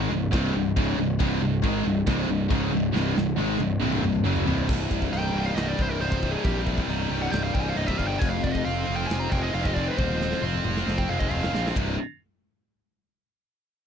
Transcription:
Already playing: G#3
0.10 C1 C2 G2
0.32 C1 C2 G2 C3, kick, snare, china
0.54 C1 C2 G2
0.76 C#1 C#2 G#2 C#3, kick, china
0.97 C1 C2 G2
1.19 C1 C2 G2 C3, kick, china
1.40 C1 C2 G2
1.62 G#1 G#2 D#3 G#3, kick, china
1.85 C1 C2 G2
2.07 C1 C2 G2 C3, kick, snare, china
2.28 C1 C2 G2
2.50 C#1 C#2 G#2 C#3, kick, china
2.72 C1 C2 G2
2.94 C1 C2 G2 C3, snare
3.16 C1 C2 G2, snare
3.37 G#1 G#2 D#3 G#3, high tom
3.59 C1 C2 G2, high tom
3.81 C1 C2 G2 C3, mid tom
3.92 mid tom
4.03 C1 C2 G2, mid tom
4.15 mid tom
4.25 F#1 F#2 C#3 F#3, mid tom
4.36 floor tom
4.46 C1 C2 G2 C3, floor tom
4.58 floor tom
4.69 C1 C2, kick, crash
4.91 C1, kick
5.02 kick
5.11 C1 G3 D#4 G5, open hi-hat
5.33 C1 G2 G3
5.45 F5
5.55 C1 G2 G3 D#5, snare, open hi-hat
5.69 D5
5.78 C1 C3 C5, kick
5.91 A#4
6.00 C1 G3 D#4 C5, open hi-hat
6.12 kick
6.22 G2 G3, kick
6.32 G#4
6.44 A#1 C2 G4, kick, open hi-hat
6.67 kick
6.78 kick
6.88 C1 G3 D#4, open hi-hat
7.09 C1 G2 G3
7.22 F#5
7.31 C1 G2 G3 G5, snare, open hi-hat
7.43 F5
7.54 C1 C3 G5, kick
7.60 G#5
7.69 F5
7.76 C1 G3 D#4 D#5, open hi-hat
7.87 E5, kick
7.98 G1 G2 G3 F5, kick
8.07 G5
8.19 F1 F2 G#5, kick, open hi-hat
8.30 F5
8.43 F1 D5, kick
8.52 D#5, kick
8.64 F1 C4 F4 F5, open hi-hat
8.87 F1 F3 C4
8.96 G5
9.07 F1 F3 C4 G#5, open hi-hat
9.11 snare
9.20 A#5
9.30 F1 G#3 G5, kick
9.42 D#5
9.53 F1 C4 F4 F5, open hi-hat
9.63 D#5, kick
9.73 F3 C4 D5, kick
9.88 B4
9.98 D#1 F2 C5, kick, high tom
10.09 high tom
10.21 snare
10.32 snare
10.42 F1 C4 F4, mid tom
10.53 mid tom
10.65 F1 F3 C4, mid tom
10.77 snare
10.86 F1 F3 C4, snare
10.98 G5, kick
11.09 F1 G#3 F5, mid tom
11.19 D#5, kick
11.31 F1 C4 F4 F5, floor tom
11.43 snare
11.53 A#1 F3 C4, snare
11.67 snare
11.76 C1 C2 G2 C3, kick, ride bell

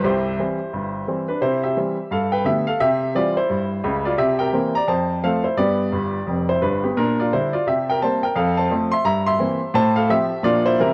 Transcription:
0.04 C2 C3 E4 G4 C5
0.39 E3 G3 C4
0.73 G1 G2
1.08 E3 G3 C4
1.28 D4 B4
1.41 C3 E4 C5
1.63 G4 E5
1.77 E3 G3 C4
2.11 G2 A4 F5
2.32 B4 G5
2.45 D3 A3 B3 G4 E5
2.67 A4 F5
2.81 C3 G4 E5
3.15 E3 G3 C4 F4 D5
3.37 E4 C5
3.50 G2
3.84 C#2 C#3
4.05 F4 D5
4.18 C3 G4 E5
4.39 A#4 G5
4.53 E3 A#3 C4
4.75 D5 A#5
4.87 F2 C5 A5
5.23 F3 A3 C4 A4 F5
5.44 E4 C5
5.57 G2 B3 G4 D5
5.92 G1 G2
6.27 F1 F2
6.49 E4 C5
6.61 G1 G2 D4 B4
6.83 B3 G4
6.97 A#2 D4 A#4
7.20 F4 D5
7.33 D3 G3 D4 E4 C5
7.53 F4 D5
7.67 C3 G4 E5
7.90 A#4 G5
8.02 G3 A#3 C4 C5 A5
8.23 A#4 G5
8.36 F2 A4 F5
8.57 C5 A5
8.71 F3 A3 C4
8.92 E5 C6
9.05 G2 E5 A#5
9.27 E5 C6
9.39 E3 A#3 C4
9.74 A2 C5 A5
9.96 A4 F5
10.10 F3 C4 G4 E5
10.43 A#2 F3 A#3 D4 F4 D5
10.66 E4 C5
10.79 C3 E3 G3 C4 E4 A#4

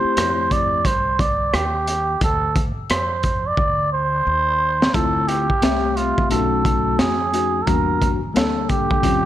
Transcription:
Already playing: A3 C4 E4 G4 C5
0.04 muted upright bass stroke
0.17 F2, cross-stick, closed hi-hat
0.51 D5, kick, closed hi-hat
0.85 C2 C5, kick, closed hi-hat
1.19 D5, kick, closed hi-hat
1.54 D#2 G4, cross-stick, closed hi-hat
1.87 closed hi-hat
2.21 D2 A4, kick, closed hi-hat
2.56 kick, closed hi-hat
2.77 muted upright bass stroke
2.90 F2 C5, cross-stick, closed hi-hat
3.23 kick, closed hi-hat
3.47 D5
3.57 D2, kick
3.93 C5
4.27 D#2
4.82 snare
4.93 D2 A3 C4 E4 F4 A4, kick, closed hi-hat
5.28 G4, closed hi-hat
5.50 muted upright bass stroke, kick
5.62 C2 A3 C4 G4 E5, snare, closed hi-hat
5.96 F4, closed hi-hat
6.18 kick
6.29 B1 A3 C#4 D#4 F#4 A4, closed hi-hat
6.65 kick, closed hi-hat
6.99 F2 G#4, snare, closed hi-hat
7.32 A3 C#4 D#4 F#4, closed hi-hat
7.62 G3 A4
7.67 E2 A#3 D4 F#4 A#4, kick, closed hi-hat
8.02 kick, closed hi-hat
8.23 muted upright bass stroke
8.34 D2 G3 A#3 D4 A4, snare, closed hi-hat
8.69 G4, kick, closed hi-hat
8.91 kick
9.02 D#2 G3 C4 C#4 F4, kick, closed hi-hat

